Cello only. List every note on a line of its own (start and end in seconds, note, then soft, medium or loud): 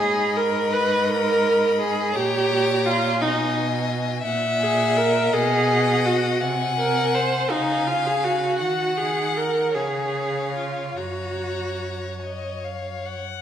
0.00 2.16 G#2 medium
2.16 3.23 A#2 medium
3.21 4.24 B2 medium
4.24 5.31 A#2 medium
5.33 6.43 B2 medium
6.42 7.50 C3 medium
7.51 8.62 C#3 medium
8.60 9.77 D#3 medium
9.76 10.97 C#3 medium
10.98 13.21 F#2 soft